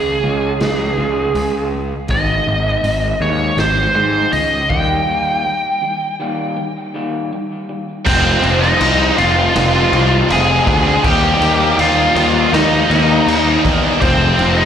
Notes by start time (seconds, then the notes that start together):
Already playing: C#2 C#3 G#3 G#4
0.23 C#2 C#3 G#3 C#4
0.60 C#2 C#3 G#3, snare, open hi-hat
0.97 C#2 C#3 G#3 C#4
1.34 C#2 C#3 G#3, open hi-hat
1.72 C#3 G#3
2.08 G#1 G#2 D#3 G#3 D#5, kick, open hi-hat
2.47 G#1 G#2 D#3
2.83 G#1 G#2 D#3, open hi-hat
3.20 D#2 G#2 D#3 G#3 C#5
3.57 G#1 G#2 D#3 C5, snare, open hi-hat
3.95 G#2 D#3 G#3 C5
4.33 C#2 G#2 D#3 D#5, open hi-hat
4.69 D#2 D#3 G3 A#3 G5, kick
5.07 D#3 G3 A#3
5.44 D#3 G3
5.81 D#3 G3
6.19 D#3 G3 A#3
6.57 D#3 G3
6.94 D#3 G3 A#3
7.32 D#3 G3
7.69 D#3 G3
8.06 F1 F2 C3 F3 G#3 C4 F4 C5, kick, crash
8.43 F1 C3 F3 G#3 C4, crash
8.61 G#3 C4 D#4 F4 D#5, snare
8.66 F3
8.81 C2 F2 C3 F3 G#3 C4 F4, crash
9.18 F1 F2 C3 F3 G#3 C4 F4 F5, crash
9.36 F3 G#3 C4, muted distorted electric guitar stroke
9.55 F1, snare, crash
9.73 G#3 C4 F4
9.77 F3
9.92 C2 C3 F3 G#3 C4 F4, crash
10.11 muted distorted electric guitar stroke
10.30 F1 F2 C3 F3 G#3 C4 F4 G#4 G#5, crash
10.47 G#3 C4 F4
10.52 F3
10.67 D2 C3 F3 G#3 C4, kick, crash
10.84 G#3 C4 F4
10.89 F3
11.04 D#2 D#3 G3 A#3 D#4 G4 G5, kick, crash
11.41 D#2 D#3 G3 A#3, crash
11.45 D#4
11.60 G3 A#3 D#4
11.78 D#2 D#3 G3 A#3 D#4 F4 F5, crash
12.15 D#2 D#3 G3 A#3 D#4, crash
12.19 D#4
12.34 G3 A#3 D#4, muted distorted electric guitar stroke
12.53 D#2 D#4 D#5, snare, crash
12.71 G3 A#3 D#4
12.90 D#2 D#3 G3 A#3 D#4, crash
13.08 muted distorted electric guitar stroke
13.27 D#2 D#3 G3 A#3 D#4, crash
13.46 G3 A#3 D#4
13.65 E2 D#3 G3 A#3 D#4, kick, crash
13.83 G3 A#3 D#4
14.01 F1 F2 C3 F3 G#3 C4 C5, kick, crash
14.38 F1 C3 F3 G#3 C4, crash
14.57 F3 G#3 C4 D#4 D#5